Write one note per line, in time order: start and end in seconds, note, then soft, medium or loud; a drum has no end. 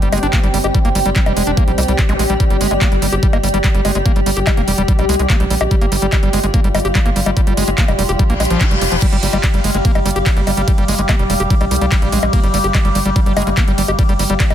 0.00 0.09 G1 medium
0.00 9.01 G3 medium
0.00 0.09 G3 medium
0.00 2.42 C4 medium
0.00 14.54 G4 medium
0.00 14.54 D5 medium
0.00 7.12 G5 medium
0.00 closed hi-hat medium
0.12 0.19 G1 loud
0.12 0.19 G#3 medium
0.12 open hi-hat loud
0.12 high bongo medium
0.18 closed hi-hat medium
0.23 0.29 G1 medium
0.23 0.27 D4 loud
0.23 closed hi-hat medium
0.33 0.40 A#3 medium
0.33 kick loud
0.33 clap loud
0.33 closed hi-hat medium
0.43 0.50 G1 medium
0.43 0.48 G3 medium
0.43 closed hi-hat soft
0.54 0.60 G1 loud
0.54 0.58 G3 loud
0.54 open hi-hat loud
0.64 0.71 G1 medium
0.64 0.67 G4 loud
0.64 closed hi-hat medium
0.64 high bongo soft
0.75 0.79 G3 medium
0.75 kick loud
0.75 closed hi-hat medium
0.85 0.91 G1 medium
0.85 0.89 A#3 loud
0.85 closed hi-hat medium
0.95 1.02 G1 loud
0.95 1.00 G3 medium
0.95 open hi-hat loud
1.06 1.12 G1 medium
1.06 1.10 G3 loud
1.06 closed hi-hat medium
1.16 1.20 G3 loud
1.16 kick loud
1.16 clap loud
1.16 closed hi-hat medium
1.26 1.33 F1 medium
1.26 1.33 G3 medium
1.26 closed hi-hat soft
1.26 high bongo medium
1.37 1.43 F1 medium
1.37 1.43 G#3 medium
1.37 open hi-hat loud
1.47 1.54 F1 medium
1.47 1.51 D4 loud
1.47 closed hi-hat soft
1.57 1.64 A#3 medium
1.57 kick loud
1.57 closed hi-hat medium
1.68 1.74 A#1 medium
1.68 1.72 G3 medium
1.68 closed hi-hat medium
1.78 1.85 C2 loud
1.78 1.81 G3 medium
1.78 open hi-hat loud
1.78 high bongo soft
1.83 closed hi-hat medium
1.88 1.95 C2 medium
1.88 1.93 G3 medium
1.88 closed hi-hat soft
1.99 2.01 G#3 medium
1.99 kick loud
1.99 clap loud
1.99 closed hi-hat medium
2.09 2.16 A#1 medium
2.09 2.13 G#3 loud
2.09 closed hi-hat medium
2.09 zap medium
2.19 2.26 A#1 loud
2.19 2.24 G#3 loud
2.19 open hi-hat loud
2.30 2.36 A#1 medium
2.30 2.34 G3 loud
2.30 closed hi-hat medium
2.40 2.44 G3 loud
2.40 5.73 G4 medium
2.40 kick loud
2.40 closed hi-hat medium
2.50 2.57 G1 medium
2.50 2.57 G3 medium
2.50 closed hi-hat medium
2.61 2.67 G1 loud
2.61 2.67 G#3 medium
2.61 open hi-hat loud
2.71 2.78 G1 medium
2.71 2.74 G#3 medium
2.71 closed hi-hat medium
2.71 high bongo soft
2.81 2.88 A#3 medium
2.81 kick loud
2.81 clap loud
2.81 closed hi-hat medium
2.92 2.98 G1 medium
2.92 2.96 G3 medium
2.92 closed hi-hat soft
3.02 3.09 G1 medium
3.02 3.07 G3 loud
3.02 open hi-hat loud
3.12 3.19 G1 medium
3.12 3.15 G4 loud
3.12 closed hi-hat soft
3.23 3.27 G3 loud
3.23 kick loud
3.23 closed hi-hat medium
3.33 3.40 G1 medium
3.33 3.38 A#3 loud
3.33 closed hi-hat medium
3.33 high bongo medium
3.43 3.50 G1 loud
3.43 3.48 G3 medium
3.43 open hi-hat loud
3.49 closed hi-hat medium
3.54 3.60 G1 medium
3.54 3.58 G3 loud
3.54 closed hi-hat medium
3.64 3.69 G3 loud
3.64 kick loud
3.64 clap loud
3.64 closed hi-hat medium
3.75 3.81 G1 medium
3.75 3.81 G3 medium
3.75 closed hi-hat soft
3.85 3.91 G1 loud
3.85 3.92 G#3 medium
3.85 open hi-hat loud
3.85 high bongo soft
3.95 4.02 G1 medium
3.95 3.98 G#3 medium
3.95 closed hi-hat medium
4.06 4.12 A#3 medium
4.06 kick loud
4.06 closed hi-hat medium
4.16 4.23 G1 medium
4.16 4.20 G3 medium
4.16 closed hi-hat medium
4.26 4.33 G1 loud
4.26 4.31 G3 loud
4.26 open hi-hat loud
4.37 4.43 G1 medium
4.37 4.39 G4 loud
4.37 closed hi-hat medium
4.47 4.51 G3 loud
4.47 kick loud
4.47 clap loud
4.47 closed hi-hat medium
4.47 high bongo medium
4.57 4.64 F1 medium
4.57 4.62 A#3 loud
4.57 closed hi-hat medium
4.68 4.74 F1 loud
4.68 4.72 G3 medium
4.68 open hi-hat loud
4.78 4.85 F1 medium
4.78 4.82 G3 loud
4.78 closed hi-hat medium
4.88 4.93 G3 loud
4.88 kick loud
4.88 closed hi-hat medium
4.99 5.05 A#1 medium
4.99 5.05 G3 medium
4.99 closed hi-hat medium
4.99 high bongo soft
5.09 5.16 C2 loud
5.09 5.16 G#3 medium
5.09 open hi-hat loud
5.14 closed hi-hat medium
5.19 5.26 C2 medium
5.19 5.22 G#3 medium
5.19 closed hi-hat medium
5.30 5.36 A#3 medium
5.30 kick loud
5.30 clap loud
5.30 closed hi-hat medium
5.40 5.47 A#1 medium
5.40 5.45 G3 medium
5.40 closed hi-hat medium
5.50 5.57 A#1 loud
5.50 5.55 G3 loud
5.50 open hi-hat loud
5.61 5.67 A#1 medium
5.61 5.63 G4 loud
5.61 closed hi-hat medium
5.61 high bongo medium
5.71 5.76 G3 loud
5.71 9.04 F4 medium
5.71 kick loud
5.71 closed hi-hat medium
5.81 5.88 G1 medium
5.81 5.86 A#3 loud
5.81 closed hi-hat medium
5.92 5.98 G1 loud
5.92 5.96 G3 medium
5.92 open hi-hat loud
6.02 6.09 G1 medium
6.02 6.07 G3 loud
6.02 closed hi-hat medium
6.12 6.17 G3 loud
6.12 kick loud
6.12 clap loud
6.12 closed hi-hat medium
6.12 high bongo soft
6.23 6.29 G1 medium
6.23 6.29 G3 medium
6.23 closed hi-hat medium
6.33 6.40 G1 loud
6.33 6.40 G#3 medium
6.33 open hi-hat loud
6.44 6.50 G1 medium
6.44 6.46 G#3 medium
6.44 closed hi-hat medium
6.54 6.60 A#3 medium
6.54 kick loud
6.54 closed hi-hat medium
6.64 6.71 G1 medium
6.64 6.69 G3 medium
6.64 closed hi-hat medium
6.75 6.81 G1 loud
6.75 6.79 G3 loud
6.75 open hi-hat loud
6.75 high bongo medium
6.80 closed hi-hat medium
6.85 6.91 G1 medium
6.85 6.88 G4 loud
6.85 closed hi-hat medium
6.95 7.00 G3 loud
6.95 kick loud
6.95 clap loud
6.95 closed hi-hat medium
6.99 14.54 F5 medium
7.06 7.12 G1 medium
7.06 7.10 A#3 loud
7.06 closed hi-hat medium
7.16 7.23 G1 loud
7.16 7.20 G3 medium
7.16 open hi-hat loud
7.26 7.33 G1 medium
7.26 7.31 G3 loud
7.26 closed hi-hat medium
7.26 high bongo soft
7.37 7.41 G3 loud
7.37 kick loud
7.37 closed hi-hat medium
7.47 7.54 G1 medium
7.47 7.54 G3 medium
7.47 closed hi-hat medium
7.57 7.64 G1 loud
7.57 7.64 G#3 medium
7.57 open hi-hat loud
7.68 7.74 G1 medium
7.68 7.70 G#3 medium
7.68 closed hi-hat medium
7.78 7.85 A#3 medium
7.78 kick loud
7.78 clap loud
7.78 closed hi-hat medium
7.88 7.95 F1 medium
7.88 7.93 G3 medium
7.88 closed hi-hat medium
7.88 high bongo medium
7.99 8.05 F1 loud
7.99 8.03 G3 loud
7.99 open hi-hat loud
8.09 8.16 F1 medium
8.09 8.12 G4 loud
8.09 closed hi-hat medium
8.19 8.24 G3 loud
8.19 kick loud
8.19 closed hi-hat medium
8.19 reverse cymbal medium
8.30 8.36 A#1 loud
8.30 8.34 A#3 loud
8.30 closed hi-hat medium
8.40 8.47 A#1 loud
8.40 8.43 G#3 medium
8.40 open hi-hat loud
8.40 high bongo soft
8.45 closed hi-hat medium
8.50 8.57 A#1 medium
8.50 8.62 F3 medium
8.50 closed hi-hat medium
8.61 8.65 G4 loud
8.61 kick loud
8.61 clap loud
8.61 closed hi-hat medium
8.71 8.78 F1 medium
8.71 8.76 G3 medium
8.71 closed hi-hat medium
8.81 8.88 F1 loud
8.81 8.84 G3 medium
8.81 open hi-hat loud
8.92 8.98 F1 medium
8.92 8.96 F3 loud
8.92 closed hi-hat medium
9.02 14.54 G3 medium
9.02 9.07 G3 loud
9.02 14.54 G4 medium
9.02 kick loud
9.02 closed hi-hat medium
9.02 ride medium
9.02 crash medium
9.13 9.19 G1 medium
9.13 9.17 G3 loud
9.13 closed hi-hat medium
9.23 9.29 G1 loud
9.23 9.27 G3 medium
9.23 open hi-hat loud
9.33 9.40 G1 medium
9.33 9.38 G3 loud
9.33 closed hi-hat medium
9.33 high bongo soft
9.44 9.48 G3 loud
9.44 kick loud
9.44 clap loud
9.44 closed hi-hat medium
9.44 ride medium
9.54 9.60 G1 medium
9.54 9.60 G3 medium
9.54 closed hi-hat medium
9.64 9.71 G1 loud
9.64 9.71 G#3 medium
9.64 open hi-hat loud
9.75 9.81 G1 medium
9.75 9.77 G#3 medium
9.75 closed hi-hat medium
9.85 9.91 A#3 medium
9.85 kick loud
9.85 closed hi-hat medium
9.85 ride medium
9.95 10.02 G1 medium
9.95 10.00 G3 medium
9.95 closed hi-hat medium
9.95 high bongo medium
10.06 10.12 G1 loud
10.06 10.10 G3 loud
10.06 open hi-hat loud
10.11 closed hi-hat medium
10.16 10.23 G1 medium
10.16 10.19 G4 loud
10.16 closed hi-hat medium
10.26 10.31 G3 loud
10.26 kick loud
10.26 clap loud
10.26 closed hi-hat medium
10.26 ride medium
10.37 10.43 G1 medium
10.37 10.41 G3 loud
10.37 closed hi-hat medium
10.47 10.54 G1 loud
10.47 10.51 G3 medium
10.47 open hi-hat loud
10.47 high bongo soft
10.57 10.64 G1 medium
10.57 10.62 G3 loud
10.57 closed hi-hat medium
10.68 10.72 G3 loud
10.68 kick loud
10.68 closed hi-hat medium
10.68 ride medium
10.78 10.85 G1 medium
10.78 10.85 G3 medium
10.78 closed hi-hat medium
10.88 10.95 G1 loud
10.88 10.95 G#3 medium
10.88 open hi-hat loud
10.99 11.05 G1 medium
10.99 11.01 G#3 medium
10.99 closed hi-hat medium
11.09 11.16 A#3 medium
11.09 kick loud
11.09 clap loud
11.09 closed hi-hat medium
11.09 ride medium
11.09 high bongo medium
11.19 11.26 F1 medium
11.19 11.24 G3 medium
11.19 closed hi-hat medium
11.30 11.36 F1 medium
11.30 11.34 G3 loud
11.30 open hi-hat loud
11.40 11.47 F1 medium
11.40 11.43 G4 loud
11.40 closed hi-hat medium
11.50 11.55 G3 loud
11.50 kick loud
11.50 closed hi-hat medium
11.50 ride medium
11.61 11.67 A#1 medium
11.61 11.65 G3 loud
11.61 closed hi-hat medium
11.61 high bongo soft
11.71 11.78 C2 loud
11.71 11.76 G3 medium
11.71 open hi-hat loud
11.76 closed hi-hat medium
11.81 11.88 C2 medium
11.81 11.86 G3 loud
11.81 closed hi-hat medium
11.92 11.96 G3 loud
11.92 kick loud
11.92 clap loud
11.92 closed hi-hat medium
11.92 ride medium
12.02 12.09 A#1 medium
12.02 12.09 G3 medium
12.02 closed hi-hat medium
12.12 12.19 A#1 loud
12.12 12.19 G#3 medium
12.12 open hi-hat loud
12.23 12.29 A#1 medium
12.23 12.25 G#3 medium
12.23 closed hi-hat medium
12.23 high bongo medium
12.33 12.40 A#3 medium
12.33 kick loud
12.33 closed hi-hat medium
12.33 ride medium
12.44 12.50 G1 medium
12.44 12.48 G3 medium
12.44 closed hi-hat medium
12.54 12.60 G1 loud
12.54 12.58 G3 loud
12.54 open hi-hat loud
12.64 12.71 G1 medium
12.64 12.67 G4 loud
12.64 closed hi-hat medium
12.75 12.79 G3 loud
12.75 kick loud
12.75 clap loud
12.75 closed hi-hat medium
12.75 ride medium
12.75 high bongo soft
12.85 12.91 G1 medium
12.85 12.89 G3 loud
12.85 closed hi-hat soft
12.95 13.02 G1 medium
12.95 13.00 G3 medium
12.95 open hi-hat loud
13.06 13.12 G1 medium
13.06 13.10 G3 loud
13.06 closed hi-hat medium
13.16 13.20 G3 loud
13.16 kick loud
13.16 closed hi-hat medium
13.16 ride medium
13.26 13.33 G1 medium
13.26 13.33 G3 medium
13.26 closed hi-hat medium
13.37 13.43 G1 loud
13.37 13.43 G#3 medium
13.37 open hi-hat loud
13.37 high bongo medium
13.42 closed hi-hat medium
13.47 13.54 G1 medium
13.47 13.50 G#3 medium
13.47 closed hi-hat medium
13.57 13.64 A#3 medium
13.57 kick loud
13.57 clap loud
13.57 closed hi-hat medium
13.57 ride medium
13.68 13.74 G1 medium
13.68 13.72 G3 medium
13.68 closed hi-hat medium
13.78 13.85 G1 loud
13.78 13.82 G3 loud
13.78 open hi-hat loud
13.88 13.95 G1 medium
13.88 13.91 G4 loud
13.88 closed hi-hat medium
13.88 high bongo soft
13.99 14.03 G3 loud
13.99 kick loud
13.99 closed hi-hat medium
13.99 ride medium
14.09 14.16 G1 medium
14.09 14.13 G3 loud
14.09 closed hi-hat medium
14.19 14.26 G1 loud
14.19 14.24 G3 medium
14.19 open hi-hat loud
14.30 14.36 G1 medium
14.30 14.34 G3 loud
14.30 closed hi-hat medium
14.40 14.44 G3 loud
14.40 kick loud
14.40 clap loud
14.40 closed hi-hat medium
14.40 ride medium
14.50 14.54 F1 medium
14.50 14.54 G3 medium
14.50 closed hi-hat soft
14.50 high bongo medium